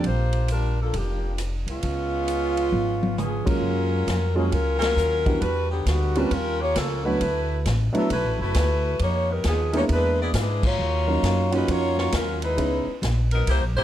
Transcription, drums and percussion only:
0.04 kick, ride
0.33 ride
0.48 hi-hat pedal, ride
0.94 kick, ride
1.38 cross-stick, hi-hat pedal, ride
1.68 ride
1.83 kick, ride
2.28 hi-hat pedal, ride
2.57 ride
2.72 high tom
3.03 high tom
3.18 hi-hat pedal, mid tom
3.47 kick, ride
4.07 kick, snare, hi-hat pedal, ride
4.52 kick, ride
4.82 snare, ride
4.97 hi-hat pedal
5.26 kick, ride
5.42 kick, ride
5.86 kick, snare, hi-hat pedal, ride
6.15 ride
6.31 kick, ride
6.76 kick, snare, hi-hat pedal, ride
7.21 kick, ride
7.66 kick, snare, hi-hat pedal, ride
7.95 ride
8.10 kick, ride
8.54 kick, snare, hi-hat pedal, ride
8.99 kick, ride
9.44 kick, snare, hi-hat pedal, ride
9.73 ride
9.89 kick, ride
10.34 kick, snare, hi-hat pedal, ride
10.63 kick, crash
11.23 kick, snare, hi-hat pedal, ride
11.52 ride
11.68 kick, ride
11.98 snare
12.12 kick, snare, hi-hat pedal, ride
12.42 ride
12.58 kick, ride
13.02 kick, snare, hi-hat pedal, ride
13.31 ride
13.47 kick, ride

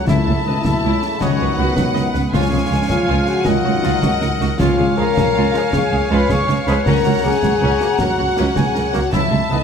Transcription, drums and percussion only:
0.08 concert bass drum, snare
0.65 concert bass drum, snare
1.02 snare
1.21 concert bass drum, snare
1.77 concert bass drum, snare
1.96 snare
2.14 snare
2.33 concert bass drum, snare
2.90 concert bass drum, snare
3.27 snare
3.45 concert bass drum, snare
3.83 snare
4.02 concert bass drum, snare
4.21 snare
4.41 snare
4.60 concert bass drum, snare, crash
5.17 concert bass drum, snare
5.54 snare
5.73 concert bass drum, snare
6.29 concert bass drum, snare
6.49 snare
6.67 snare
6.86 concert bass drum, snare
7.43 concert bass drum, snare
7.80 snare
7.99 concert bass drum, snare
8.37 snare
8.56 concert bass drum, snare
8.75 snare
8.94 snare
9.13 concert bass drum, snare

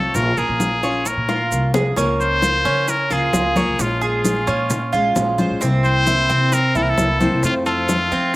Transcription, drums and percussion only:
0.15 high bongo, high conga, maracas
0.37 high bongo, high conga, maracas
0.60 high bongo, high conga, maracas
0.83 high bongo, high conga, maracas
1.06 high bongo, high conga, maracas
1.29 high bongo, high conga, maracas
1.51 high conga, maracas
1.74 low bongo, high conga, maracas
1.97 high bongo, high conga, maracas
2.20 high conga, maracas
2.42 high bongo, high conga, maracas
2.65 high conga, maracas
2.88 high bongo, high conga, maracas
3.10 high conga, maracas
3.33 high bongo, low bongo, high conga, maracas
3.56 high conga, maracas
3.79 high bongo, high conga, maracas
4.02 high bongo, high conga, maracas
4.25 high bongo, high conga, maracas
4.47 high bongo, high conga, maracas
4.70 high bongo, high conga, low conga, maracas
4.93 high conga, maracas
5.16 high bongo, low bongo, high conga, maracas
5.38 high bongo, high conga, maracas
5.61 high bongo, high conga, maracas
5.84 high conga, maracas
6.07 high bongo, high conga, maracas
6.30 high conga, maracas
6.52 high bongo, high conga, maracas
6.75 high conga, maracas
6.98 high bongo, low bongo, high conga, maracas
7.21 high conga, maracas
7.43 high bongo, high conga, maracas
7.66 high bongo, high conga, maracas
7.89 high bongo, high conga, maracas
8.11 high bongo, high conga, maracas

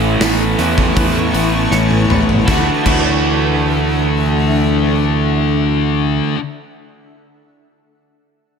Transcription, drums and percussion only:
0.21 snare, open hi-hat
0.59 snare, open hi-hat
0.78 kick
0.97 kick, open hi-hat
1.34 open hi-hat
1.72 snare
1.91 high tom
2.10 mid tom
2.29 floor tom
2.48 kick, snare
2.86 kick, crash

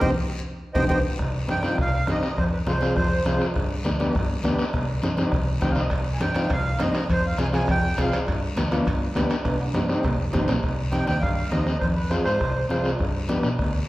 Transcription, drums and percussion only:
0.01 bombo low, high conga, high timbale, long guiro
0.75 bombo low, high conga, high timbale, long guiro
0.89 bombo low, high conga, high timbale, long guiro
1.19 bombo low, bombo rim, long guiro
1.49 bombo rim, high conga, short guiro
1.63 bombo rim, high conga, short guiro
1.78 bombo low, bombo rim, long guiro
2.07 bombo rim, high conga, short guiro
2.22 bombo rim, short guiro
2.37 bombo low, bombo rim, long guiro
2.67 bombo rim, high conga, short guiro
2.81 bombo rim, high conga, short guiro
2.96 bombo low, bombo rim, long guiro
3.25 bombo rim, high conga, short guiro
3.40 bombo rim, short guiro
3.54 bombo low, bombo rim, long guiro
3.84 bombo rim, high conga, short guiro
3.99 bombo rim, high conga, short guiro
4.13 bombo low, bombo rim, long guiro
4.43 bombo rim, high conga, short guiro
4.59 bombo rim, short guiro
4.73 bombo low, bombo rim, long guiro
5.02 bombo rim, high conga, short guiro
5.17 bombo rim, high conga, short guiro
5.32 bombo low, bombo rim, long guiro
5.61 bombo low, bombo rim, high conga, short guiro
5.75 bombo rim, short guiro
5.90 bombo low, bombo rim, high timbale, long guiro
6.21 bombo rim, high conga, high timbale, short guiro
6.34 bombo rim, high conga, high timbale, short guiro
6.50 bombo low, bombo rim, high timbale, long guiro
6.79 bombo rim, high conga, high timbale, low timbale, short guiro
6.94 bombo rim, high timbale, short guiro
7.07 bombo low, bombo rim, high timbale, long guiro
7.38 bombo rim, high conga, high timbale, short guiro
7.53 bombo rim, high conga, high timbale, short guiro
7.67 bombo low, bombo rim, high timbale, long guiro
7.97 bombo low, bombo rim, high conga, high timbale, short guiro
8.12 bombo rim, high timbale, short guiro
8.27 bombo low, bombo rim, high timbale, long guiro
8.57 bombo rim, high conga, high timbale, short guiro
8.71 bombo rim, high conga, high timbale, short guiro
8.86 bombo low, bombo rim, high timbale, long guiro
9.15 bombo rim, high conga, high timbale, low timbale, short guiro
9.30 bombo rim, high timbale, short guiro
9.45 bombo low, bombo rim, high timbale, long guiro
9.60 high timbale
9.74 bombo rim, high conga, low timbale, short guiro
9.89 bombo rim, short guiro
10.03 bombo low, bombo rim, low timbale, long guiro
10.33 bombo low, bombo rim, high conga, low timbale, short guiro
10.48 bombo rim, low timbale, short guiro
10.63 bombo low, bombo rim, long guiro
10.92 bombo rim, high conga, short guiro
11.07 bombo rim, high conga, short guiro
11.22 bombo low, bombo rim, long guiro
11.51 bombo rim, high conga, short guiro
11.67 bombo rim, short guiro
11.81 bombo low, bombo rim, long guiro
12.11 bombo rim, high conga, short guiro
12.26 bombo rim, short guiro
12.40 bombo low, bombo rim, long guiro
12.69 bombo rim, high conga, short guiro
12.84 bombo rim, short guiro
12.99 bombo low, bombo rim, long guiro
13.28 bombo rim, high conga, short guiro
13.43 bombo rim, short guiro
13.59 bombo low, bombo rim, long guiro

